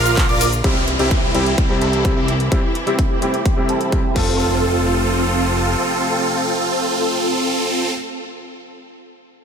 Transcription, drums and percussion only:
0.06 closed hi-hat medium
0.06 shaker soft
0.17 kick loud
0.17 clap loud
0.17 closed hi-hat medium
0.17 ride medium
0.17 shaker soft
0.29 closed hi-hat soft
0.41 open hi-hat loud
0.41 ride medium
0.41 shaker medium
0.53 closed hi-hat medium
0.53 shaker soft
0.64 kick loud
0.64 closed hi-hat medium
0.88 closed hi-hat medium
0.99 closed hi-hat medium
1.11 kick loud
1.11 closed hi-hat medium
1.35 closed hi-hat medium
1.46 closed hi-hat medium
1.58 kick loud
1.58 closed hi-hat medium
1.81 closed hi-hat medium
1.93 closed hi-hat medium
2.05 kick loud
2.05 closed hi-hat medium
2.28 closed hi-hat medium
2.40 closed hi-hat medium
2.52 kick loud
2.52 closed hi-hat medium
2.75 closed hi-hat medium
2.87 closed hi-hat medium
2.99 kick loud
2.99 closed hi-hat medium
3.22 closed hi-hat medium
3.34 closed hi-hat soft
3.46 kick loud
3.46 closed hi-hat medium
3.69 closed hi-hat medium
3.81 closed hi-hat medium
3.92 kick loud
3.92 closed hi-hat medium
4.16 kick loud
4.16 crash medium

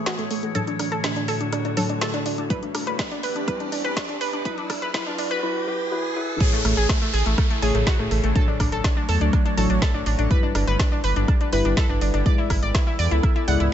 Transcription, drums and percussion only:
0.06 snare loud
0.06 closed hi-hat medium
0.19 closed hi-hat soft
0.31 open hi-hat loud
0.43 closed hi-hat soft
0.55 closed hi-hat medium
0.67 closed hi-hat soft
0.79 cross-stick medium
0.79 open hi-hat loud
0.92 closed hi-hat soft
1.04 snare loud
1.04 closed hi-hat medium
1.16 closed hi-hat soft
1.28 open hi-hat loud
1.41 closed hi-hat soft
1.53 cross-stick medium
1.53 closed hi-hat medium
1.65 closed hi-hat soft
1.77 open hi-hat loud
1.89 closed hi-hat soft
2.01 snare loud
2.01 closed hi-hat medium
2.14 closed hi-hat soft
2.26 open hi-hat loud
2.38 closed hi-hat soft
2.50 kick loud
2.50 closed hi-hat medium
2.63 closed hi-hat soft
2.75 cross-stick medium
2.75 open hi-hat loud
2.87 closed hi-hat soft
2.99 kick loud
2.99 snare loud
2.99 closed hi-hat medium
3.11 closed hi-hat soft
3.23 open hi-hat loud
3.36 closed hi-hat soft
3.48 kick loud
3.48 cross-stick medium
3.48 closed hi-hat medium
3.60 closed hi-hat soft
3.72 open hi-hat loud
3.85 closed hi-hat soft
3.97 kick loud
3.97 snare loud
3.97 closed hi-hat medium
4.09 closed hi-hat soft
4.21 open hi-hat loud
4.33 closed hi-hat soft
4.45 kick loud
4.45 closed hi-hat medium
4.58 closed hi-hat soft
4.70 kick medium
4.70 cross-stick medium
4.70 open hi-hat loud
4.82 closed hi-hat soft
4.94 kick loud
4.94 snare loud
4.94 closed hi-hat medium
5.07 closed hi-hat soft
5.18 open hi-hat loud
5.31 closed hi-hat soft
6.40 kick loud
6.40 closed hi-hat medium
6.40 crash loud
6.65 cross-stick medium
6.65 open hi-hat loud
6.77 closed hi-hat medium
6.89 kick loud
6.89 snare loud
6.89 closed hi-hat medium
7.14 open hi-hat loud
7.26 closed hi-hat medium
7.38 kick loud
7.38 cross-stick medium
7.38 closed hi-hat medium
7.50 closed hi-hat soft
7.62 open hi-hat loud
7.75 closed hi-hat medium
7.87 kick loud
7.87 snare loud
7.87 closed hi-hat medium
8.11 open hi-hat loud
8.24 closed hi-hat medium
8.36 kick loud
8.36 closed hi-hat medium
8.60 kick medium
8.60 cross-stick medium
8.60 open hi-hat loud
8.72 closed hi-hat medium
8.84 kick loud
8.84 snare loud
8.84 closed hi-hat medium
9.09 open hi-hat loud
9.21 closed hi-hat medium
9.33 kick loud
9.33 cross-stick medium
9.33 closed hi-hat medium
9.46 closed hi-hat soft
9.57 open hi-hat loud
9.70 closed hi-hat medium
9.82 kick loud
9.82 snare loud
9.82 closed hi-hat medium
10.06 open hi-hat loud
10.19 closed hi-hat medium
10.31 kick loud
10.31 closed hi-hat medium
10.55 cross-stick medium
10.55 open hi-hat loud
10.67 closed hi-hat medium
10.79 kick loud
10.79 snare loud
10.79 closed hi-hat medium
11.04 open hi-hat loud
11.16 closed hi-hat medium
11.28 kick loud
11.28 cross-stick medium
11.28 closed hi-hat medium
11.41 closed hi-hat soft
11.53 open hi-hat loud
11.65 closed hi-hat soft
11.77 kick loud
11.77 snare loud
11.77 closed hi-hat medium
12.01 open hi-hat loud
12.14 closed hi-hat medium
12.26 kick loud
12.26 closed hi-hat medium
12.50 kick medium
12.50 cross-stick medium
12.50 open hi-hat loud
12.63 closed hi-hat medium
12.75 kick loud
12.75 snare loud
12.75 closed hi-hat medium
12.99 open hi-hat loud
13.11 closed hi-hat medium
13.23 kick loud
13.23 cross-stick medium
13.23 closed hi-hat medium
13.36 closed hi-hat soft
13.48 open hi-hat loud
13.60 closed hi-hat medium

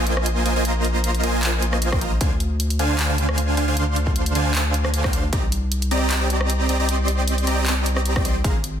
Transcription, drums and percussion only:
0.07 closed hi-hat medium
0.17 cross-stick medium
0.26 closed hi-hat medium
0.46 closed hi-hat medium
0.65 closed hi-hat medium
0.85 closed hi-hat medium
1.04 closed hi-hat medium
1.15 closed hi-hat medium
1.24 closed hi-hat medium
1.43 clap loud
1.43 closed hi-hat medium
1.62 closed hi-hat medium
1.73 cross-stick medium
1.82 closed hi-hat medium
1.92 kick loud
1.92 cross-stick medium
2.01 closed hi-hat medium
2.21 kick loud
2.21 closed hi-hat medium
2.40 closed hi-hat medium
2.60 closed hi-hat medium
2.70 closed hi-hat medium
2.79 closed hi-hat medium
2.99 clap loud
2.99 closed hi-hat medium
3.18 closed hi-hat medium
3.29 cross-stick medium
3.38 closed hi-hat medium
3.57 closed hi-hat medium
3.77 closed hi-hat medium
3.96 closed hi-hat medium
4.07 kick medium
4.16 closed hi-hat medium
4.26 closed hi-hat medium
4.35 closed hi-hat medium
4.55 clap loud
4.55 closed hi-hat medium
4.74 closed hi-hat medium
4.85 cross-stick medium
4.94 closed hi-hat medium
5.04 kick loud
5.04 cross-stick medium
5.04 clap soft
5.13 closed hi-hat medium
5.33 kick loud
5.33 closed hi-hat medium
5.52 closed hi-hat medium
5.72 closed hi-hat medium
5.82 closed hi-hat medium
5.91 closed hi-hat medium
6.11 clap loud
6.11 closed hi-hat medium
6.30 closed hi-hat medium
6.41 cross-stick medium
6.50 closed hi-hat medium
6.69 closed hi-hat medium
6.89 closed hi-hat medium
7.08 closed hi-hat medium
7.28 closed hi-hat medium
7.38 closed hi-hat medium
7.47 closed hi-hat medium
7.66 clap loud
7.66 closed hi-hat medium
7.86 closed hi-hat medium
7.97 cross-stick medium
8.05 closed hi-hat medium
8.16 kick loud
8.16 cross-stick medium
8.25 closed hi-hat medium
8.44 kick loud
8.44 closed hi-hat medium
8.64 closed hi-hat medium

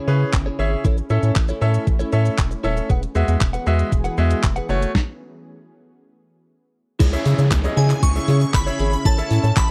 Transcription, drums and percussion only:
0.33 kick loud
0.33 clap loud
0.85 kick loud
0.85 shaker medium
0.98 shaker soft
1.10 shaker medium
1.23 shaker medium
1.36 kick loud
1.36 clap loud
1.36 shaker medium
1.49 shaker medium
1.62 shaker soft
1.74 shaker medium
1.87 kick loud
1.87 shaker medium
2.00 shaker medium
2.13 shaker medium
2.26 shaker medium
2.38 kick loud
2.38 clap loud
2.38 shaker medium
2.51 shaker medium
2.64 shaker soft
2.77 shaker medium
2.90 kick loud
2.90 shaker medium
3.03 closed hi-hat medium
3.03 shaker soft
3.15 shaker medium
3.28 closed hi-hat medium
3.28 shaker medium
3.41 kick loud
3.41 clap loud
3.41 shaker medium
3.54 closed hi-hat medium
3.54 shaker medium
3.67 shaker soft
3.79 closed hi-hat medium
3.79 shaker medium
3.92 kick loud
3.92 shaker medium
4.05 closed hi-hat medium
4.05 shaker medium
4.18 shaker medium
4.31 closed hi-hat medium
4.31 shaker medium
4.43 kick loud
4.43 clap loud
4.43 shaker medium
4.56 closed hi-hat medium
4.56 shaker medium
4.69 shaker soft
4.82 closed hi-hat medium
4.82 shaker medium
4.95 kick loud
4.95 snare medium
7.00 kick loud
7.00 closed hi-hat medium
7.00 crash loud
7.00 shaker medium
7.13 shaker medium
7.26 open hi-hat medium
7.26 shaker medium
7.39 shaker medium
7.39 shaker soft
7.51 kick loud
7.51 clap loud
7.51 closed hi-hat medium
7.51 shaker medium
7.64 shaker medium
7.64 shaker soft
7.77 open hi-hat medium
7.77 shaker soft
7.90 clap medium
7.90 shaker medium
8.03 kick loud
8.03 closed hi-hat medium
8.03 shaker medium
8.15 shaker medium
8.28 open hi-hat medium
8.28 shaker medium
8.41 shaker medium
8.41 shaker soft
8.54 kick loud
8.54 clap loud
8.54 closed hi-hat medium
8.54 shaker medium
8.67 shaker medium
8.80 open hi-hat medium
8.80 shaker medium
8.93 shaker soft
8.93 shaker medium
9.05 kick loud
9.05 closed hi-hat medium
9.05 shaker medium
9.18 shaker medium
9.31 open hi-hat medium
9.31 shaker medium
9.44 shaker medium
9.44 shaker soft
9.57 kick loud
9.57 clap loud
9.57 closed hi-hat medium
9.57 shaker medium

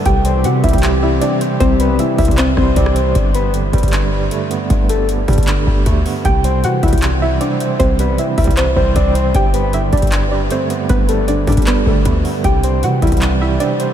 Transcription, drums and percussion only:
0.06 kick loud
0.06 closed hi-hat medium
0.25 closed hi-hat medium
0.44 closed hi-hat medium
0.64 kick loud
0.64 closed hi-hat medium
0.69 closed hi-hat medium
0.73 kick medium
0.73 closed hi-hat medium
0.78 closed hi-hat medium
0.83 clap loud
0.83 closed hi-hat medium
1.22 closed hi-hat medium
1.41 closed hi-hat medium
1.60 kick loud
1.60 closed hi-hat medium
1.80 closed hi-hat medium
1.99 closed hi-hat medium
2.18 kick loud
2.18 closed hi-hat medium
2.18 open hi-hat medium
2.25 kick loud
2.25 closed hi-hat medium
2.31 closed hi-hat medium
2.38 clap loud
2.38 closed hi-hat loud
2.57 kick medium
2.57 cross-stick medium
2.76 kick medium
2.76 closed hi-hat medium
2.86 cross-stick loud
2.96 closed hi-hat medium
3.15 kick loud
3.15 closed hi-hat medium
3.34 closed hi-hat medium
3.54 closed hi-hat medium
3.73 kick medium
3.73 closed hi-hat medium
3.78 closed hi-hat medium
3.83 kick medium
3.83 closed hi-hat medium
3.88 closed hi-hat medium
3.93 clap loud
3.93 closed hi-hat medium
4.31 closed hi-hat medium
4.51 closed hi-hat medium
4.70 kick loud
4.70 closed hi-hat medium
4.89 closed hi-hat medium
5.09 closed hi-hat medium
5.28 kick medium
5.28 closed hi-hat medium
5.28 open hi-hat medium
5.33 closed hi-hat medium
5.38 kick medium
5.38 closed hi-hat medium
5.43 closed hi-hat medium
5.48 clap loud
5.48 closed hi-hat medium
5.67 kick medium
5.86 kick medium
5.86 closed hi-hat medium
6.06 open hi-hat medium
6.25 kick loud
6.25 closed hi-hat medium
6.44 closed hi-hat medium
6.64 closed hi-hat medium
6.83 kick loud
6.83 closed hi-hat medium
6.88 closed hi-hat medium
6.93 kick medium
6.93 closed hi-hat medium
6.98 closed hi-hat medium
7.02 clap loud
7.02 closed hi-hat medium
7.41 closed hi-hat medium
7.60 closed hi-hat medium
7.80 kick loud
7.80 closed hi-hat medium
7.99 closed hi-hat medium
8.18 closed hi-hat medium
8.38 kick loud
8.38 closed hi-hat medium
8.38 open hi-hat medium
8.44 kick medium
8.44 closed hi-hat medium
8.51 closed hi-hat medium
8.57 clap loud
8.57 closed hi-hat medium
8.77 kick medium
8.96 kick medium
8.96 closed hi-hat medium
9.15 closed hi-hat medium
9.35 kick loud
9.35 closed hi-hat medium
9.54 closed hi-hat medium
9.73 closed hi-hat medium
9.93 kick medium
9.93 closed hi-hat medium
9.97 closed hi-hat medium
10.02 kick medium
10.02 closed hi-hat medium
10.07 closed hi-hat medium
10.12 clap loud
10.12 closed hi-hat loud
10.50 closed hi-hat medium
10.70 closed hi-hat medium
10.89 kick loud
10.89 closed hi-hat medium
11.09 closed hi-hat medium
11.28 closed hi-hat medium
11.47 kick medium
11.47 closed hi-hat medium
11.47 open hi-hat medium
11.52 closed hi-hat medium
11.57 kick medium
11.57 closed hi-hat medium
11.62 closed hi-hat medium
11.67 clap loud
11.67 closed hi-hat medium
11.86 kick medium
12.05 kick medium
12.05 closed hi-hat medium
12.25 open hi-hat medium
12.44 kick loud
12.44 closed hi-hat medium
12.63 closed hi-hat medium
12.83 closed hi-hat medium
13.02 kick medium
13.02 closed hi-hat medium
13.07 closed hi-hat medium
13.12 kick medium
13.12 closed hi-hat medium
13.17 closed hi-hat medium
13.22 clap loud
13.22 closed hi-hat medium
13.60 closed hi-hat medium
13.80 closed hi-hat medium

